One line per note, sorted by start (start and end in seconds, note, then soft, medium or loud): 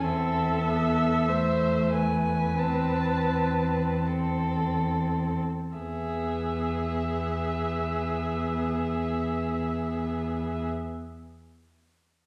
0.04 5.39 E2 soft
0.04 0.64 C4 soft
0.04 1.30 A4 soft
0.04 1.93 E5 medium
0.65 1.30 B3 soft
1.28 2.59 A3 soft
1.28 1.95 C5 soft
1.94 4.08 B4 soft
1.94 2.61 G#5 soft
2.59 4.03 C4 soft
2.59 4.06 A5 soft
4.06 5.40 C4 soft
4.06 5.43 A4 soft
5.76 10.67 E2 soft
5.76 10.65 B3 soft
5.76 10.67 G#4 soft
5.76 10.66 E5 soft